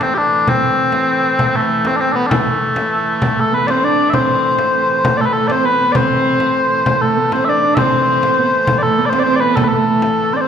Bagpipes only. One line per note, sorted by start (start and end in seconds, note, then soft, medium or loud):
0.03 0.14 C4 medium
0.14 0.49 D4 loud
0.14 0.18 G4 loud
0.49 1.56 C4 medium
1.56 1.87 A3 medium
1.87 1.96 C4 medium
1.96 2.01 D4 medium
2.01 2.12 C4 medium
2.12 2.27 B3 medium
2.12 2.16 D4 medium
2.27 3.40 A3 medium
2.27 2.30 D4 medium
3.40 3.54 A4 medium
3.54 3.67 B4 medium
3.67 3.84 C5 medium
3.67 3.70 D5 medium
3.84 4.10 D5 loud
4.10 4.14 E5 medium
4.14 5.17 C5 medium
5.17 5.26 A4 medium
5.17 5.21 D5 medium
5.26 5.33 B4 medium
5.33 5.48 A4 medium
5.48 5.52 D5 medium
5.52 5.65 C5 medium
5.65 5.92 B4 loud
5.92 7.02 C5 medium
5.92 5.96 D5 medium
7.02 7.33 A4 medium
7.33 7.45 C5 medium
7.45 7.49 E5 loud
7.49 7.75 D5 loud
7.75 8.78 C5 medium
7.75 7.78 E5 medium
8.78 8.83 D5 loud
8.83 9.06 A4 loud
9.06 9.19 C5 medium
9.06 9.09 D5 medium
9.19 9.23 D5 loud
9.23 9.36 C5 loud
9.36 9.40 D5 medium
9.40 9.56 B4 medium
9.56 9.64 A4 medium
9.64 9.68 B4 medium
9.68 10.34 A4 medium
10.34 10.36 C5 medium
10.34 10.41 D5 medium
10.41 10.48 C5 medium